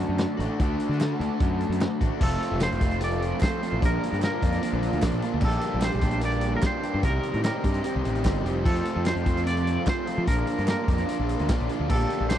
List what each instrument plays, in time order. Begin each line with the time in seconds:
Already playing: overdriven electric guitar D3 A3 D4 F#4 A4, analog synth pad F#4 D5 A5
0.09 picked electric bass F#2
0.19 snare, clap, closed hi-hat
0.37 picked electric bass A1, overdriven electric guitar D4 F#4, closed hi-hat
0.42 overdriven electric guitar A3
0.59 picked electric bass D2, overdriven electric guitar D3 A3 D4 F#4 A4, kick, closed hi-hat
0.80 closed hi-hat
0.89 picked electric bass D3, snare
1.00 snare, clap, closed hi-hat
1.19 picked electric bass D2, overdriven electric guitar D3 D4 F#4 A4, closed hi-hat
1.40 picked electric bass F#2, kick, closed hi-hat
1.61 closed hi-hat
1.70 picked electric bass F#2, closed hi-hat
1.81 snare, clap, closed hi-hat
2.01 picked electric bass A1, overdriven electric guitar A3 D4 F#4, kick, closed hi-hat
2.20 picked electric bass F1, overdriven electric guitar F3 A3 C4 F4, analog synth pad A4 F5 C6, clean electric guitar A4, kick, crash
2.31 closed hi-hat
2.42 closed hi-hat
2.52 picked electric bass F1
2.61 overdriven electric guitar F3 A3 C4 F4, clean electric guitar C5, snare, clap, closed hi-hat
2.72 picked electric bass F1, closed hi-hat
2.81 overdriven electric guitar F3 A3 C4 F4, kick, closed hi-hat
2.91 closed hi-hat
3.01 overdriven electric guitar F3 A3 C4 F4, clean electric guitar D5, closed hi-hat
3.11 closed hi-hat
3.22 closed hi-hat
3.40 overdriven electric guitar F3 A3 C4 F4, clean electric guitar C5, kick, snare, clap, closed hi-hat
3.62 overdriven electric guitar F3 A3 C4 F4, closed hi-hat
3.73 picked electric bass A1
3.79 picked electric bass A#1, overdriven electric guitar A#2 D3 F3 A#3 D4, analog synth pad A#4 D6, kick, closed hi-hat
3.83 overdriven electric guitar F4, clean electric guitar A#4
4.03 closed hi-hat
4.13 picked electric bass G2, closed hi-hat
4.22 overdriven electric guitar A#2 D3 F3 A#3 D4 F4, clean electric guitar A#4, snare, clap, closed hi-hat
4.42 picked electric bass F2, overdriven electric guitar A#2 D3 F3 A#3 D4 F4, kick, closed hi-hat
4.52 snare, closed hi-hat
4.62 overdriven electric guitar A#2 D3 F3 A#3 D4 F4, closed hi-hat
4.73 picked electric bass A#1
4.83 closed hi-hat
4.93 picked electric bass D2, closed hi-hat
5.02 picked electric bass A#1, overdriven electric guitar A#2 D3 F3 A#3 D4 F4, kick, snare, clap, closed hi-hat
5.11 picked electric bass A#1, closed hi-hat
5.22 overdriven electric guitar A#2 D3 F3 A#3 D4 F4, closed hi-hat
5.34 picked electric bass D2
5.40 picked electric bass A#1, overdriven electric guitar A#2 D3 A#3 D4 G4, analog synth pad G5 A5, kick, crash
5.45 overdriven electric guitar G3 D4 G4, clean electric guitar A4
5.52 closed hi-hat
5.61 closed hi-hat
5.74 picked electric bass A#1
5.82 overdriven electric guitar A#2 D3 G3 A#3 D4 G4, clean electric guitar C5, snare, clap, closed hi-hat
5.92 picked electric bass A#1, closed hi-hat
6.01 overdriven electric guitar A#2 D3 G3 A#3 D4 G4, kick, closed hi-hat
6.11 closed hi-hat
6.21 overdriven electric guitar A#2 D3 G3 A#3 D4 G4, closed hi-hat
6.25 clean electric guitar D5
6.31 closed hi-hat
6.41 closed hi-hat
6.56 clean electric guitar A#4
6.62 overdriven electric guitar A#2 D3 G3 A#3 D4, kick, snare, clap, closed hi-hat
6.66 overdriven electric guitar G4, clean electric guitar C5
6.82 overdriven electric guitar A#2 D3 G3 A#3 D4 G4, closed hi-hat
6.95 picked electric bass G2
7.03 picked electric bass C2, overdriven electric guitar C3 D#3 G3 C4 D#4 G4, analog synth pad G4 D#5 C6, clean electric guitar A#4, kick, closed hi-hat
7.23 closed hi-hat
7.34 picked electric bass A2, closed hi-hat
7.43 overdriven electric guitar C3 D#3 G3 C4 D#4 G4, clean electric guitar A#4, snare, clap, closed hi-hat
7.64 picked electric bass G2, overdriven electric guitar C3 D#3 G3 C4 D#4 G4, kick, closed hi-hat
7.74 closed hi-hat
7.84 overdriven electric guitar C3 D#3 G3 C4 D#4 G4, closed hi-hat
7.96 picked electric bass C2
8.05 picked electric bass A1, closed hi-hat
8.15 closed hi-hat
8.25 picked electric bass G1, overdriven electric guitar C3 D#3 G3 C4 D#4 G4, kick, snare, clap, closed hi-hat
8.34 closed hi-hat
8.45 picked electric bass F1, overdriven electric guitar C3 D#3 G3 C4 D#4 G4, closed hi-hat
8.64 overdriven electric guitar F2 C3 F3 A3 C4 F4, picked electric bass F2, analog synth pad A4 F5 C6, clean electric guitar A4, kick, crash
8.76 closed hi-hat
8.85 closed hi-hat
8.96 picked electric bass F2
9.05 overdriven electric guitar F2 C3 F3 A3 C4 F4, clean electric guitar C5, snare, clap, closed hi-hat
9.16 picked electric bass F2, closed hi-hat
9.25 overdriven electric guitar F2 C3 F3 A3 C4 F4, kick, closed hi-hat
9.37 snare, closed hi-hat
9.46 overdriven electric guitar F2 C3 F3 A3 C4 F4, clean electric guitar D5, closed hi-hat
9.57 closed hi-hat
9.67 closed hi-hat
9.85 overdriven electric guitar F2 C3 F3 A3 C4 F4, kick, snare, clap, closed hi-hat
9.89 clean electric guitar C5
10.07 overdriven electric guitar F2 C3 F3 A3 C4 F4, closed hi-hat
10.18 picked electric bass F3
10.26 picked electric bass A#1, overdriven electric guitar A#2 D3 F3 A#3 D4 F4, analog synth pad A#4 D6, clean electric guitar A#4, kick, closed hi-hat
10.47 closed hi-hat
10.58 picked electric bass G2, closed hi-hat
10.67 overdriven electric guitar A#2 D3 F3 A#3 D4 F4, clean electric guitar A#4, snare, clap, closed hi-hat
10.87 picked electric bass F2, overdriven electric guitar A#2 D3 F3 A#3 D4 F4, kick, closed hi-hat
10.98 snare, closed hi-hat
11.06 overdriven electric guitar A#2 D3 F3 A#3 D4 F4, closed hi-hat
11.20 picked electric bass A#1
11.29 closed hi-hat
11.39 picked electric bass D2, closed hi-hat
11.48 picked electric bass A#1, overdriven electric guitar A#2 D3 F3 A#3 D4 F4, kick, snare, clap, closed hi-hat
11.59 picked electric bass A#1, closed hi-hat
11.69 overdriven electric guitar A#2 D3 F3 A#3 D4 F4, closed hi-hat
11.80 picked electric bass D2
11.90 picked electric bass A#1, overdriven electric guitar A#2 D3 G3 A#3 D4 G4, clean electric guitar A4, analog synth pad G5 A5, kick, crash
12.00 closed hi-hat
12.10 closed hi-hat
12.21 picked electric bass A#1
12.29 overdriven electric guitar A#2 D3 G3 A#3 D4 G4, clean electric guitar C5, snare, clap, closed hi-hat